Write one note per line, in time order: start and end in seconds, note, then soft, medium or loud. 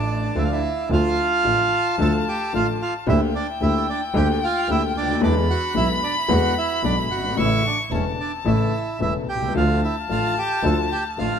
0.00 0.31 A1 medium
0.00 0.32 A1 medium
0.00 0.32 A2 medium
0.00 0.31 D3 medium
0.00 0.31 F3 medium
0.00 0.32 A3 medium
0.00 0.60 D4 medium
0.00 0.33 F4 medium
0.00 0.60 D5 medium
0.00 0.37 A5 medium
0.35 0.58 D2 medium
0.35 0.59 D2 medium
0.35 0.59 D3 medium
0.35 0.59 F3 medium
0.35 0.59 A3 medium
0.35 0.43 E4 medium
0.35 0.59 F4 medium
0.35 0.44 E5 medium
0.35 0.90 F5 medium
0.45 0.51 F5 medium
0.52 0.89 E4 medium
0.52 0.89 E5 medium
0.90 1.13 D2 medium
0.90 1.13 D3 medium
0.90 1.13 F3 medium
0.90 1.13 A3 medium
0.90 1.14 F4 medium
0.90 1.96 F4 medium
0.90 1.96 F5 loud
0.90 3.08 A5 medium
1.44 1.67 A1 medium
1.44 1.67 A2 medium
1.44 1.67 D3 soft
1.44 1.67 F3 soft
1.44 1.67 A3 soft
1.44 1.67 F4 medium
1.98 2.22 D2 medium
1.98 2.22 D3 medium
1.98 2.22 F3 medium
1.98 2.22 A3 medium
1.98 2.22 F4 medium
1.98 2.13 A4 medium
1.98 2.13 A5 medium
2.28 2.53 G4 medium
2.28 2.53 G5 medium
2.53 2.76 A1 medium
2.53 2.76 A2 medium
2.53 2.76 D3 medium
2.53 2.76 F3 soft
2.53 2.76 A3 soft
2.53 2.76 F4 medium
2.53 2.67 F4 medium
2.53 2.67 F5 loud
2.82 2.94 F4 medium
2.82 2.94 F5 loud
3.07 3.29 D2 medium
3.07 3.30 D2 loud
3.07 3.29 D3 medium
3.07 3.29 A3 medium
3.07 3.29 A#3 medium
3.07 3.20 E4 medium
3.07 3.29 G4 medium
3.07 3.21 E5 medium
3.07 5.22 G5 medium
3.35 3.47 D4 medium
3.35 3.47 D5 medium
3.60 3.83 D2 medium
3.60 3.83 D3 medium
3.60 3.83 A3 soft
3.60 3.83 A#3 soft
3.60 3.86 E4 medium
3.60 3.83 G4 medium
3.60 3.87 E5 medium
3.90 4.01 D4 medium
3.90 4.01 D5 medium
4.14 4.37 D2 medium
4.14 4.37 D3 medium
4.14 4.37 A3 medium
4.14 4.37 A#3 medium
4.14 4.37 G4 medium
4.14 4.28 G4 medium
4.14 4.28 G5 medium
4.44 4.68 F4 medium
4.44 4.70 F5 loud
4.68 4.91 D2 medium
4.68 4.91 D3 medium
4.68 4.91 A3 soft
4.68 4.91 A#3 soft
4.68 4.82 E4 medium
4.68 4.91 G4 medium
4.68 4.82 E5 loud
4.95 5.21 D2 medium
4.95 5.21 D4 medium
4.95 5.21 D5 loud
5.02 5.08 C#2 soft
5.08 5.15 D2 medium
5.15 5.21 D#2 medium
5.21 5.44 E2 medium
5.21 5.44 E2 loud
5.21 5.44 D3 medium
5.21 5.44 E3 medium
5.21 5.44 G#3 medium
5.21 5.44 B3 medium
5.21 5.35 D4 medium
5.21 5.44 E4 medium
5.21 5.35 D5 loud
5.21 7.38 B5 loud
5.50 5.75 F#4 medium
5.50 5.74 F#5 medium
5.75 5.98 B1 medium
5.75 5.97 B2 medium
5.75 5.97 D3 soft
5.75 5.98 G#3 soft
5.75 5.97 B3 soft
5.75 5.98 E4 medium
5.75 5.89 E4 medium
5.75 5.89 E5 medium
6.04 6.16 D4 medium
6.04 6.15 D5 medium
6.28 6.51 E2 medium
6.28 6.52 E2 medium
6.28 6.51 D3 medium
6.28 6.52 E3 medium
6.28 6.51 G#3 medium
6.28 6.52 B3 medium
6.28 6.52 E4 medium
6.28 6.55 F#4 medium
6.28 6.55 F#5 loud
6.58 6.82 E4 medium
6.58 6.82 E5 medium
6.83 7.05 B1 medium
6.83 7.06 B1 medium
6.83 7.06 B2 medium
6.83 7.06 D3 medium
6.83 7.05 G#3 soft
6.83 7.06 B3 soft
6.83 6.96 D4 medium
6.83 7.06 E4 soft
6.83 6.96 D5 medium
7.10 7.36 G1 medium
7.10 7.36 F#4 medium
7.10 7.36 F#5 medium
7.17 7.23 F#1 soft
7.24 7.30 G1 medium
7.31 7.37 G#1 medium
7.36 7.59 A1 medium
7.36 7.60 A1 loud
7.36 7.60 A2 medium
7.36 7.59 C#3 medium
7.36 7.59 E3 medium
7.36 7.60 A3 medium
7.36 7.60 E4 medium
7.36 7.63 E4 medium
7.36 7.66 E5 medium
7.36 7.93 C#6 loud
7.66 7.78 D4 medium
7.66 7.78 D5 medium
7.91 8.14 E1 medium
7.91 8.14 E2 soft
7.91 8.14 C#3 soft
7.91 8.14 E3 soft
7.91 8.14 A3 soft
7.91 8.05 C#4 medium
7.91 8.14 E4 soft
7.91 8.05 C#5 medium
7.91 9.28 A5 medium
8.20 8.32 D4 medium
8.20 8.32 D5 medium
8.45 8.68 A1 medium
8.45 8.68 A2 medium
8.45 8.68 C#3 medium
8.45 8.68 E3 medium
8.45 8.68 A3 medium
8.45 8.68 E4 medium
8.45 8.97 E4 medium
8.45 9.00 E5 medium
9.00 9.23 E1 medium
9.00 9.23 E2 medium
9.00 9.23 C#3 soft
9.00 9.23 E3 soft
9.00 9.23 A3 soft
9.00 9.23 E4 medium
9.00 9.14 E4 medium
9.00 9.14 E5 medium
9.27 9.53 C2 medium
9.27 9.54 G4 medium
9.27 9.53 G5 loud
9.35 9.41 B1 soft
9.42 9.48 C2 medium
9.49 9.55 C#2 medium
9.54 9.77 D2 medium
9.54 9.78 D2 medium
9.54 9.78 D3 medium
9.54 9.78 F3 medium
9.54 9.78 A3 medium
9.54 9.78 F4 medium
9.54 9.81 F4 medium
9.54 9.81 F5 medium
9.54 11.39 A5 loud
9.84 9.96 E4 medium
9.84 9.96 E5 medium
10.09 10.32 A1 medium
10.09 10.32 A2 medium
10.09 10.32 D3 soft
10.09 10.32 F3 soft
10.09 10.32 A3 soft
10.09 10.32 F4 soft
10.09 10.35 F4 medium
10.09 10.38 F5 medium
10.38 10.63 G4 medium
10.38 10.65 G5 medium
10.63 10.86 D2 medium
10.63 10.86 D3 medium
10.63 10.86 F3 medium
10.63 10.86 A3 medium
10.63 10.86 F4 medium
10.63 10.77 A4 medium
10.63 10.77 A5 medium
10.92 11.04 G4 medium
10.92 11.04 G5 medium
11.18 11.39 A1 medium
11.18 11.39 A2 medium
11.18 11.39 D3 medium
11.18 11.39 F3 soft
11.18 11.39 A3 soft
11.18 11.39 F4 medium
11.18 11.39 F5 medium